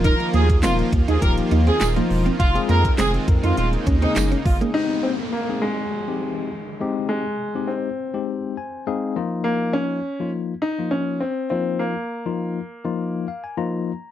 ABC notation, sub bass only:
X:1
M:4/4
L:1/16
Q:1/4=102
K:Ab
V:1 name="Sub bass" clef=bass
E,,,2 E,,2 E,,,2 E,, E,, E,,,2 E,,2 E,,,2 _F,,,2 | F,,,2 F,,2 F,,,2 F,, F,, E,,,2 E,,2 _G,,,2 =G,,,2 | z16 | z16 |
z16 | z16 |]